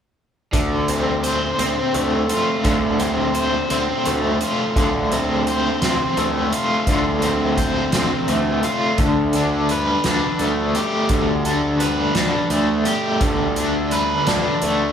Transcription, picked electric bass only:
0.53 D2
1.59 D2
1.95 D2
2.65 D2
3.71 D2
4.07 D2
4.76 D2
5.82 D2
6.17 D2
6.87 D2
7.93 D2
8.28 D2
8.98 D2
10.05 D2
10.40 D2
11.10 D2
12.15 D2
12.50 D2
13.21 D2
14.27 D2
14.62 D2

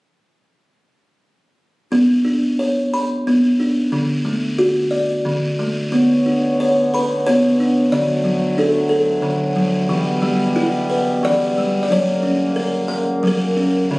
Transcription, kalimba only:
1.92 B3
2.25 D4
2.59 C#5
2.94 B5
3.27 B3
3.60 D4
3.92 D3
4.25 A3
4.58 F#4
4.91 D5
5.25 D3
5.59 A3
5.92 B3
6.26 D4
6.60 C#5
6.94 B4 B5
7.27 B3 C#5
7.60 D4
7.92 D3 D5
8.24 F#3
8.58 D4 A4
8.89 A4
9.22 D3
9.56 F#3
9.89 E3
10.22 G3
10.56 E4
10.90 B4
11.23 E3 D5
11.58 G3
11.83 D5
11.90 F#3 C#5
12.23 C#4
12.56 A#4
12.88 F#5
13.23 F#3
13.27 A#4
13.57 C#4
13.91 D3

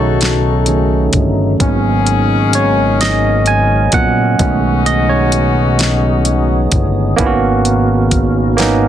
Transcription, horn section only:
Already playing: D#4 F#4 A4
1.60 C#4 D#4 G#4
4.40 C#4 D#4 F#4

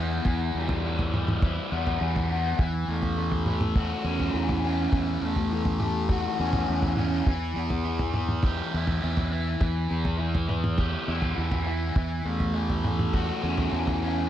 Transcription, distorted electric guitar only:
Already playing: E3 G3 E4
0.00 B3
0.26 E3
0.56 G3
0.85 E3
1.14 G3
1.43 E4
1.71 B3
2.00 E3
2.30 B3
2.59 E3
2.89 A3
3.18 E3
3.47 A3
3.77 F#4
4.05 C#4
4.34 E3
4.64 C#4
4.93 E3
5.22 A3
5.52 E3
5.81 A3
6.10 F#4
6.39 C#4
6.70 E3
6.98 C#4
7.27 E3
7.56 B3
7.86 E3
8.16 B3
8.45 G4
8.74 E4
9.03 E3
9.32 E4
9.61 E3
9.90 B3
10.18 E3
10.49 B3
10.78 G4
11.08 E4
11.38 E3
11.66 E4
11.96 E3
12.26 A3
12.55 E3
12.84 A3
13.14 F#4
13.43 C#4
13.72 E3
14.02 C#4

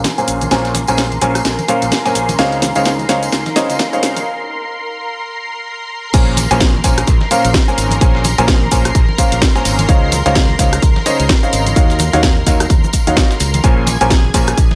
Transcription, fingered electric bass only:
0.28 A#1
0.51 A#1
0.88 A#1
1.22 A#1
1.45 A#1
1.82 A#1
2.15 A#1
2.39 C#2
2.76 C#2
3.09 C#2
3.32 C#2
3.70 C#2
4.03 C#2
6.14 A#1
6.51 A#1
6.84 A#1
7.07 A#1
7.45 A#1
7.78 G#1
8.01 A#1
8.38 A#1
8.71 A#1
8.95 A#1
9.32 A#1
9.65 G#1
9.89 C#2
10.26 C#2
10.59 C#2
10.82 C#2
11.20 C#2
11.53 G#1
11.76 D#2
12.13 D#2
12.47 D#2
12.70 D#2
13.07 D#2
13.40 C#2
13.64 A#1
14.01 A#1
14.34 A#1
14.57 A#1

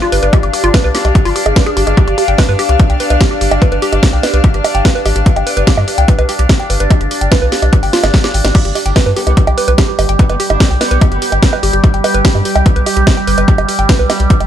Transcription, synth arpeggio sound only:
0.02 F4
0.12 B4
0.23 B4
0.33 G4
0.43 G4
0.54 G4
0.64 F4
0.74 B4
0.84 B4
0.95 G4
1.05 G4
1.15 G4
1.25 F4
1.36 G4
1.46 G#4
1.56 B4
1.66 G#4
1.77 G4
1.87 G#4
1.97 G4
2.08 G4
2.18 G4
2.28 G5
2.38 B4
2.49 B4
2.59 G4
2.69 G4
2.80 G4
2.90 G5
3.00 B4
3.10 B4
3.21 G4
3.31 G4
3.41 G4
3.51 G5
3.62 B4
3.72 B4
3.82 G4
3.93 G4
4.03 G4
4.13 G5
4.23 B4
4.34 B4
4.44 G4
4.54 G4
4.64 G4
4.75 G5
4.85 B4
4.95 B4
5.06 G4
5.16 G4
5.26 G4
5.36 G5
5.47 B4
5.57 B4
5.67 G4
5.77 G4
5.88 G4
5.98 G5
6.08 B4
6.19 B4
6.29 G4
6.39 G4
6.49 G4
6.60 G5
6.70 B4
6.80 B4
6.90 G4
7.01 G4
7.11 G4
7.21 G5
7.32 B4
7.42 B4
7.52 G4
7.62 G4
7.73 G4
7.83 G5
7.93 F4
8.04 G#4
8.14 G4
8.24 G4
8.34 G5
8.45 G4
8.55 G4
8.65 G4
8.75 G4
8.86 G5
8.96 B4
9.06 B4
9.16 G4
9.27 G4
9.37 G4
9.47 G5
9.58 B4
9.68 B4
9.78 G4
9.88 G4
9.99 G4
10.09 G5
10.19 B4
10.29 B4
10.40 G4
10.50 G4
10.60 G4
10.71 G5
10.81 B4
10.91 B4
11.01 G4
11.12 G4
11.22 G4
11.32 G5
11.43 B4
11.53 B4
11.63 G4
11.73 G4
11.84 G4
11.94 G5
12.04 B4
12.14 B4
12.25 G4
12.35 G4
12.45 G4
12.56 G5
12.66 B4
12.76 B4
12.86 G4
12.97 G4
13.07 G4
13.17 G5
13.27 B4
13.38 B4
13.48 G4
13.58 G4
13.69 G4
13.79 G5
13.89 B4
13.99 B4
14.10 G4
14.20 G4
14.30 G4
14.40 G5

